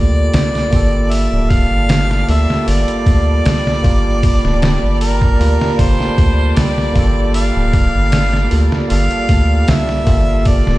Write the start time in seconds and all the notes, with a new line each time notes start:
Already playing: D2 G3 A#3 F4 G4 A4 D5 A5
0.34 C2, snare, open hi-hat
0.55 snare
0.71 G1 A#3 F4 G4, kick, open hi-hat
0.76 A4
1.12 E5, open hi-hat
1.32 D1
1.50 F5, kick, open hi-hat
1.71 G1
1.89 snare, open hi-hat
2.11 snare
2.28 D2 A#3 F4 G4 A4 E5, open hi-hat
2.50 snare
2.66 G1 A#3 F4 G4 D5, open hi-hat
2.71 A4
2.88 closed hi-hat
3.06 D2, kick, open hi-hat
3.46 C2, snare, open hi-hat
3.67 snare
3.82 G1 A#3 F4 G4, kick, open hi-hat
3.88 A#4
4.23 kick, open hi-hat
4.44 D1, snare
4.62 snare, open hi-hat
4.83 G1
5.01 A#4, open hi-hat
5.22 kick
5.40 D2 A#3 F4 G4 A#4, open hi-hat
5.61 snare
5.76 G1 A#3 F4 G4 C5, kick, open hi-hat
5.82 A4
6.00 snare
6.18 D2, kick, open hi-hat
6.57 C2 D5, snare, open hi-hat
6.78 snare
6.93 G1 A#3 F4 G4, kick, open hi-hat
6.98 A4
7.34 F5, open hi-hat
7.56 D1
7.73 kick, open hi-hat
7.95 G1
8.12 snare, open hi-hat
8.33 snare
8.50 D2 A#3 F4 G4 A4, open hi-hat
8.72 snare
8.88 G1 A#3 F4 G4 F5, open hi-hat
8.93 A4
9.11 closed hi-hat
9.29 D2, kick, open hi-hat
9.68 C2 E5, snare, open hi-hat
9.89 snare
10.05 G1 A#3 F4 G4, kick, open hi-hat
10.10 A4
10.45 D5, kick, open hi-hat
10.67 D1, snare